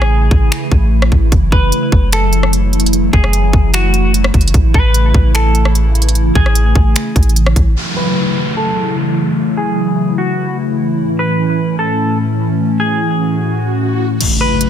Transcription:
Already playing: 808-style bass A1, analog synth pad C#3 E3 A3 E4, clean electric guitar G#4
0.02 cross-stick
0.31 808-style bass A1, kick
0.52 finger snap
0.72 808-style bass A1, kick
1.02 cross-stick
1.12 808-style bass A1, kick
1.32 808-style bass F#1, analog synth pad F#3, kick, closed hi-hat
1.52 808-style bass F#1, clean electric guitar B4, kick
1.72 closed hi-hat
1.92 808-style bass F#1, kick
2.12 clean electric guitar A4, finger snap, closed hi-hat
2.33 closed hi-hat
2.43 cross-stick
2.53 closed hi-hat
2.73 closed hi-hat
2.80 closed hi-hat
2.86 closed hi-hat
2.93 closed hi-hat
3.13 808-style bass F#1, clean electric guitar G#4, kick
3.24 cross-stick
3.33 closed hi-hat
3.53 808-style bass F#1, kick
3.74 clean electric guitar F#4, finger snap, closed hi-hat
3.94 closed hi-hat
4.14 closed hi-hat
4.24 cross-stick
4.34 808-style bass F#1, kick, closed hi-hat
4.41 closed hi-hat
4.48 closed hi-hat
4.54 808-style bass A1, analog synth pad C#3 E3 E4, kick, closed hi-hat
4.74 808-style bass A1, clean electric guitar B4, kick
4.94 closed hi-hat
5.14 808-style bass A1, kick
5.35 clean electric guitar A4, finger snap, closed hi-hat
5.55 closed hi-hat
5.65 cross-stick
5.75 closed hi-hat
5.95 closed hi-hat
6.02 closed hi-hat
6.09 closed hi-hat
6.15 closed hi-hat
6.35 808-style bass A1, clean electric guitar G#4, kick
6.46 cross-stick
6.55 closed hi-hat
6.75 808-style bass A1, kick
6.96 finger snap, closed hi-hat
7.16 808-style bass A1, kick, closed hi-hat
7.23 closed hi-hat
7.29 closed hi-hat
7.36 closed hi-hat
7.46 cross-stick
7.56 808-style bass A1, kick, closed hi-hat
7.76 analog synth pad C#3 E3 F#3 A3 E4, downlifter
7.96 clean electric guitar B4
8.57 clean electric guitar A4
9.57 clean electric guitar G#4
10.18 clean electric guitar F#4
10.98 analog synth pad A2 A3 C#4, swell
11.19 clean electric guitar B4
11.79 clean electric guitar A4
12.80 clean electric guitar G#4
14.21 analog synth pad C#3 E3 F#3 A3 E4, closed hi-hat, crash, impact
14.41 clean electric guitar B4
14.61 closed hi-hat

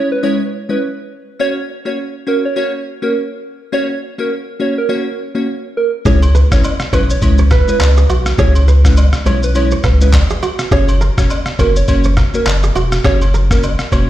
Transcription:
Already playing: synth keys G#3 C#4 E4 C#5
0.12 soft synth lead B4
0.23 synth keys G#3 C#4 E4 C#5, soft synth lead C#5
0.69 synth keys G#3 C#4 E4 C#5, soft synth lead B4
1.39 synth keys A#3 C#4 F#4 C#5, soft synth lead C#5
1.85 synth keys A#3 C#4 F#4 C#5, soft synth lead C#5
2.27 synth keys A#3 C#4 F#4 C#5, soft synth lead A#4
2.45 soft synth lead C#5
2.56 synth keys A#3 C#4 F#4 C#5, soft synth lead C#5
3.02 synth keys A#3 C#4 F#4 C#5, soft synth lead A#4
3.72 synth keys A#3 C#4 F#4 C#5, soft synth lead C#5
4.18 synth keys A#3 C#4 F#4 C#5, soft synth lead A#4
4.60 synth keys A#3 C#4 F#4 C#5, soft synth lead C#5
4.78 soft synth lead A#4
4.89 synth keys A#3 C#4 F#4 C#5
5.35 synth keys A#3 C#4 F#4 C#5
5.77 soft synth lead A#4
6.05 sub bass C#2, synth keys G#3 C#4 E4 C#5, kora G#4, soft synth lead C#5, kick, shaker
6.22 high agogo, shaker
6.35 kora B4, shaker
6.51 sub bass G#1, synth keys G#3 C#4 E4 C#5, soft synth lead C#5, kick, cross-stick, shaker
6.64 high agogo, low woodblock, shaker
6.80 cross-stick, shaker
6.93 sub bass B1, synth keys G#3 C#4 E4 C#5, soft synth lead B4, kora C#5, kick, high agogo, shaker
7.10 soft synth lead C#5, shaker
7.22 sub bass C#2, synth keys G#3 C#4 E4 C#5, soft synth lead C#5, kick, high agogo, shaker
7.38 kora C#5, shaker
7.50 kora B4, kick, cross-stick, shaker
7.68 synth keys G#3 C#4 E4 C#5, soft synth lead B4, shaker
7.80 sub bass C#2, cross-stick, clap, high agogo, low woodblock, shaker
7.97 kora G#4, shaker
8.09 sub bass B1, kora F#4, high agogo, shaker
8.26 cross-stick, shaker
8.38 sub bass C#2, synth keys G#3 C#4 E4 C#5, kora G#4, soft synth lead C#5, kick, shaker
8.55 high agogo, shaker
8.68 kora B4, shaker
8.84 synth keys G#3 C#4 E4 C#5, soft synth lead B4, kick, cross-stick, shaker
8.97 high agogo, low woodblock, shaker
9.13 cross-stick, shaker
9.26 sub bass B1, synth keys G#3 C#4 E4 C#5, kora C#5, soft synth lead C#5, high agogo, shaker
9.43 soft synth lead B4, shaker
9.55 synth keys G#3 C#4 E4 C#5, soft synth lead C#5, high agogo, shaker
9.71 kora C#5, shaker
9.83 sub bass C#2, kora B4, kick, cross-stick, shaker
10.01 synth keys G#3 C#4 E4 C#5, soft synth lead B4, shaker
10.13 kick, cross-stick, clap, high agogo, low woodblock, shaker
10.30 kora G#4, shaker
10.43 kora F#4, high agogo, shaker
10.59 cross-stick, shaker
10.71 sub bass F#1, synth keys A#3 C#4 F#4 C#5, kora G#4, soft synth lead C#5, kick, shaker
10.88 high agogo, shaker
11.01 kora A#4, shaker
11.17 sub bass E1, synth keys A#3 C#4 F#4 C#5, soft synth lead C#5, kick, cross-stick, shaker
11.30 high agogo, low woodblock, shaker
11.46 cross-stick, shaker
11.59 sub bass F#1, synth keys A#3 C#4 F#4 C#5, soft synth lead A#4, kora C#5, kick, high agogo, shaker
11.76 soft synth lead C#5, shaker
11.88 sub bass F#1, synth keys A#3 C#4 F#4 C#5, soft synth lead C#5, kick, high agogo, shaker
12.04 kora C#5, shaker
12.17 kora A#4, kick, cross-stick, shaker
12.34 synth keys A#3 C#4 F#4 C#5, soft synth lead A#4, shaker
12.46 sub bass F#1, cross-stick, clap, high agogo, low woodblock, shaker
12.63 kora G#4, shaker
12.75 sub bass E1, kora F#4, high agogo, shaker
12.92 cross-stick, shaker
13.04 sub bass F#1, synth keys A#3 C#4 F#4 C#5, kora G#4, soft synth lead C#5, kick, cross-stick, shaker
13.21 high agogo, shaker
13.34 kora A#4, shaker
13.50 synth keys A#3 C#4 F#4 C#5, soft synth lead A#4, kick, cross-stick, shaker
13.63 high agogo, low woodblock, shaker
13.79 cross-stick, shaker
13.92 sub bass E1, synth keys A#3 C#4 F#4 C#5, kora C#5, soft synth lead C#5, kick, high agogo, shaker

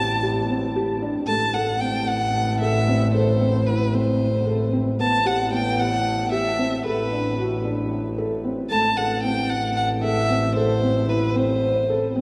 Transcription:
Already playing: double bass A1, violin A5
0.23 felt piano G4
0.50 felt piano C4
0.76 felt piano G4
1.02 felt piano D4
1.27 double bass A1, felt piano A3, violin A5
1.54 felt piano A4, violin F#5
1.80 felt piano C4, violin G5
2.07 violin F#5
2.60 felt piano A4, violin E5
2.88 felt piano C4
3.14 felt piano A4, violin C5
3.41 felt piano C4
3.66 felt piano E4, violin B4
3.94 felt piano C4, violin C5
4.47 felt piano A4
4.73 felt piano C4
4.99 double bass A1, felt piano B3, violin A5
5.26 felt piano G4, violin F#5
5.51 felt piano B3, violin G5
5.79 violin F#5
6.32 felt piano G4, violin E5
6.59 felt piano C4
6.84 double bass A1, felt piano A4, violin B4
7.12 felt piano D4
7.38 felt piano F#4
7.65 felt piano D4
8.18 felt piano A4
8.44 felt piano C4
8.70 double bass A1, felt piano A3, violin A5
8.96 felt piano A4, violin F#5
9.23 felt piano C4, violin G5
9.49 violin F#5
9.76 violin F#5
10.03 felt piano A4, violin E5
10.30 felt piano C4
10.56 felt piano A4, violin C5
10.83 felt piano C4
11.08 felt piano E4, violin B4
11.36 felt piano C4, violin C5
11.90 felt piano A4
12.16 felt piano C4

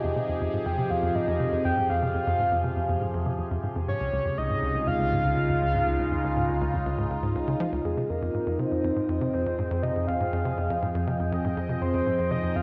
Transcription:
Already playing: synth drone F2, analog synth pad C3 F3 G4 G#4, soft synth lead D#5
0.04 analog synth bass F2
0.16 analog synth bass C3
0.29 analog synth bass F2
0.41 analog synth bass F2
0.53 analog synth bass G#2
0.66 analog synth bass F2, soft synth lead G5
0.78 analog synth bass C3
0.90 analog synth bass F2, soft synth lead F5
1.03 analog synth bass F2
1.15 analog synth bass G#2, soft synth lead D#5
1.28 analog synth bass F2
1.40 analog synth bass C3
1.52 analog synth bass F2
1.65 analog synth bass F2, soft synth lead G5
1.77 analog synth bass G#2
1.90 analog synth bass F2, soft synth lead F5
2.02 analog synth bass C3
2.14 analog synth bass F2
2.27 analog synth bass F2
2.39 analog synth bass G#2
2.52 analog synth bass F2
2.64 analog synth bass C3
2.76 analog synth bass F2
2.89 analog synth bass F2
3.01 analog synth bass G#2
3.13 analog synth bass F2
3.26 analog synth bass C3
3.38 analog synth bass F2
3.51 analog synth bass F2
3.63 analog synth bass G#2
3.75 analog synth bass F2
3.88 synth drone C#2, analog synth bass G#2, analog synth pad C#3, soft synth lead C#5
4.00 analog synth bass C#2
4.11 analog synth bass C#2, analog synth pad G#3
4.25 analog synth bass F2
4.32 analog synth pad F4
4.38 analog synth bass C#2, soft synth lead D#5
4.50 analog synth bass G#2
4.55 analog synth pad D#4
4.62 analog synth bass C#2
4.75 analog synth bass C#2
4.87 analog synth bass F2, soft synth lead F5
5.00 analog synth bass C#2
5.12 analog synth bass G#2
5.24 analog synth bass C#2
5.37 analog synth bass C#2
5.49 analog synth bass F2
5.62 analog synth bass C#2
5.74 analog synth bass G#2
5.86 analog synth bass C#2
5.99 analog synth bass C#2
6.11 analog synth bass F2
6.24 analog synth bass C#2
6.36 analog synth bass G#2
6.48 analog synth bass C#2
6.61 analog synth bass C#2
6.73 analog synth bass F2
6.86 analog synth bass C#2
6.98 analog synth bass G#2
7.10 analog synth bass C#2
7.23 analog synth bass G#2
7.35 analog synth bass C#2
7.48 analog synth bass C#3
7.60 analog synth bass F3
7.72 analog synth bass C#2
7.85 synth drone F2, analog synth bass F2, analog synth pad F3, soft synth lead G#4, synth texture D#5
7.97 analog synth bass C3, analog synth pad C4
8.09 analog synth bass F2, soft synth lead A#4, analog synth pad G5
8.22 analog synth bass F2
8.34 analog synth bass G#2
8.47 analog synth bass F2
8.59 analog synth bass C3, soft synth lead C5
8.72 analog synth bass F2
8.84 analog synth bass F2
8.96 analog synth bass G#2
9.09 analog synth bass F2, analog synth pad G#4
9.21 analog synth bass C3
9.33 analog synth bass F2, soft synth lead C5
9.46 analog synth bass F2
9.59 analog synth bass G#2
9.71 analog synth bass F2
9.83 analog synth bass C3, soft synth lead D#5
9.96 analog synth bass F2
10.08 analog synth bass F2, soft synth lead F5
10.20 analog synth bass G#2
10.33 analog synth bass F2
10.45 analog synth bass C3
10.58 analog synth bass F2
10.70 analog synth bass F2
10.82 analog synth bass G#2
10.95 analog synth bass F2
11.07 analog synth bass C3
11.19 analog synth bass F2
11.32 analog synth bass F2
11.44 analog synth bass G#2
11.57 analog synth bass F2
11.69 analog synth bass C3
11.81 analog synth bass F2, soft synth lead C5
11.94 analog synth bass F2
12.06 analog synth bass G#2
12.19 analog synth bass F2
12.31 analog synth bass C3, soft synth lead D#5
12.43 analog synth bass F2
12.56 analog synth bass F2, soft synth lead F5

